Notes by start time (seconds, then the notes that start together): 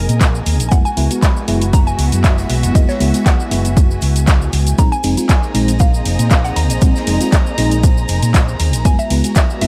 Already playing: A#3 C4 D#4 G#4 A#4 D#5 G#5
0.09 A#2, closed hi-hat, shaker
0.20 A#1, kick, snare, clap, closed hi-hat, shaker
0.35 shaker
0.46 D#2, open hi-hat, shaker
0.60 A#1, closed hi-hat, shaker
0.69 G#3 B3 E4 F#4 F#5 G#5, kick, closed hi-hat, shaker
0.81 F#4
0.85 G#5, shaker
0.97 C#2 G#3 B3 E4, open hi-hat, shaker
1.10 G#3 B3 F#4, closed hi-hat, shaker
1.22 B5, kick, snare, clap, closed hi-hat, shaker
1.37 shaker
1.48 F#1 G#3 B3 E4, open hi-hat, shaker
1.62 E5, closed hi-hat, shaker
1.73 A#5, kick, closed hi-hat, shaker
1.87 G#5, shaker
1.99 C#2, open hi-hat, shaker
2.12 F#2, closed hi-hat, shaker
2.24 F#1 E5, kick, snare, clap, closed hi-hat, shaker
2.38 closed hi-hat, shaker
2.50 B1, open hi-hat, shaker
2.63 F#1, closed hi-hat, shaker
2.75 G#3 B3 E4 D#5, kick, closed hi-hat, shaker
2.89 C#5, snare, shaker
3.00 C#2 G#3 B3 E4, open hi-hat, shaker
3.14 G#3 B3 F#4, closed hi-hat, shaker
3.26 F#5, kick, snare, clap, closed hi-hat, shaker
3.40 shaker
3.51 F#1 G#3 B3 E4, open hi-hat, shaker
3.65 closed hi-hat, shaker
3.77 kick, closed hi-hat, shaker
3.91 shaker
4.01 C#2, open hi-hat, shaker
4.16 closed hi-hat, shaker
4.27 kick, snare, clap, closed hi-hat, shaker
4.42 shaker
4.53 C#2, open hi-hat, shaker
4.67 closed hi-hat, shaker
4.78 G#3 A#3 C4 D#4 G#4 C5 A#5, kick, closed hi-hat, shaker
4.92 G#5, shaker
5.03 F1 G#3 C4 D#4, open hi-hat, ride, shaker
5.17 G#3 C4 F4, closed hi-hat, shaker
5.29 D#5 G#5, kick, snare, clap, closed hi-hat, shaker
5.43 A#5, shaker
5.54 A#1 G#3 C4 D#4, open hi-hat, ride, shaker
5.68 closed hi-hat, shaker
5.79 F5, kick, closed hi-hat, shaker
5.94 shaker
6.05 F1, open hi-hat, ride, shaker
6.19 A#2, closed hi-hat, shaker
6.30 A#1 F5, kick, snare, clap, closed hi-hat, shaker
6.44 F#5, closed hi-hat, shaker
6.56 D#2 A#5, open hi-hat, ride, shaker
6.70 A#1, closed hi-hat, shaker
6.81 G#3 C4 D#4, kick, closed hi-hat, shaker
6.96 snare, shaker
7.07 F1 G#3 C4 D#4, open hi-hat, ride, shaker
7.21 G#3 C4 F4, closed hi-hat, shaker
7.32 kick, snare, clap, closed hi-hat, shaker
7.46 shaker
7.58 A#1 G#3 C4 D#4, open hi-hat, ride, shaker
7.71 closed hi-hat, shaker
7.83 kick, closed hi-hat, shaker
7.97 shaker
8.08 F1, open hi-hat, ride, shaker
8.22 A#2, closed hi-hat, shaker
8.34 A#1, kick, snare, clap, closed hi-hat, shaker
8.48 shaker
8.60 D#2, open hi-hat, ride, shaker
8.73 A#1, closed hi-hat, shaker
8.85 G#3 B3 E4 F#4 B4 G#5, kick, closed hi-hat, shaker
8.99 E5, shaker
9.08 C#2 G#3 B3 E4 F#4, open hi-hat, ride, shaker
9.24 G#3 B3 F#4, closed hi-hat, shaker
9.35 E5, kick, snare, clap, closed hi-hat, shaker
9.50 shaker
9.61 F#1 G#3 B3 E4 E5, open hi-hat, ride, shaker